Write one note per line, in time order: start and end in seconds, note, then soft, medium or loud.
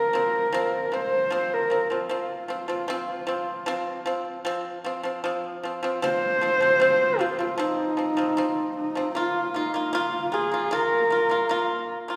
0.00 0.95 A#4 loud
0.13 0.45 F3 medium
0.13 0.46 C4 medium
0.53 0.84 F3 loud
0.53 0.85 C4 loud
0.92 1.24 F3 medium
0.92 1.24 C4 medium
0.92 1.55 C5 loud
1.30 1.63 F3 medium
1.30 1.64 C4 loud
1.53 1.94 A#4 medium
1.70 1.86 F3 medium
1.70 1.87 C4 medium
1.90 2.06 F3 medium
1.90 2.07 C4 medium
1.90 4.65 F4 medium
2.09 2.41 F3 medium
2.09 2.42 C4 medium
2.48 2.65 F3 medium
2.48 2.66 C4 medium
2.68 2.84 F3 medium
2.68 2.85 C4 medium
2.88 3.20 F3 loud
2.88 3.21 C4 loud
3.27 3.59 F3 medium
3.27 3.60 C4 medium
3.66 3.98 F3 loud
3.66 3.99 C4 loud
4.06 4.38 F3 medium
4.06 4.38 C4 medium
4.45 4.77 F3 loud
4.45 4.78 C4 loud
4.84 5.01 F3 medium
4.84 5.01 C4 medium
5.03 5.20 F3 medium
5.03 5.21 C4 medium
5.24 5.55 F3 loud
5.24 5.56 C4 medium
5.63 5.79 F3 medium
5.63 5.80 C4 medium
5.83 5.99 F3 medium
5.83 5.99 C4 medium
6.02 6.34 F3 loud
6.02 6.35 C4 loud
6.02 7.22 C5 loud
6.41 6.57 F3 medium
6.41 6.58 C4 medium
6.61 6.77 F3 medium
6.61 6.77 C4 medium
6.80 7.12 F3 medium
6.80 7.13 C4 loud
7.19 7.35 F3 medium
7.19 7.36 C4 medium
7.19 7.59 F4 loud
7.39 7.55 F3 medium
7.39 7.56 C4 medium
7.58 7.90 F3 medium
7.58 7.91 C4 loud
7.58 8.73 D#4 loud
7.97 8.13 F3 medium
7.97 8.14 C4 medium
8.17 8.33 F3 medium
8.17 8.34 C4 medium
8.37 8.84 F3 medium
8.37 8.85 C4 loud
8.77 9.13 D#4 medium
8.95 9.11 F3 medium
8.95 9.12 C4 medium
9.15 9.47 A#3 medium
9.15 9.58 F4 medium
9.15 9.47 F4 loud
9.54 9.70 A#3 medium
9.54 9.96 D#4 medium
9.54 9.71 F4 medium
9.74 9.90 A#3 medium
9.74 9.91 F4 medium
9.93 10.25 A#3 loud
9.93 10.35 F4 loud
9.93 10.26 F4 loud
10.32 10.48 A#3 medium
10.32 10.49 F4 medium
10.32 10.75 G#4 medium
10.52 10.68 A#3 medium
10.52 10.69 F4 medium
10.71 11.03 A#3 loud
10.71 11.03 F4 loud
10.71 11.90 A#4 loud
11.10 11.26 A#3 medium
11.10 11.27 F4 medium
11.30 11.46 A#3 medium
11.30 11.46 F4 medium
11.49 11.97 A#3 loud
11.49 11.97 F4 loud
12.08 12.16 A#3 medium
12.08 12.16 F4 medium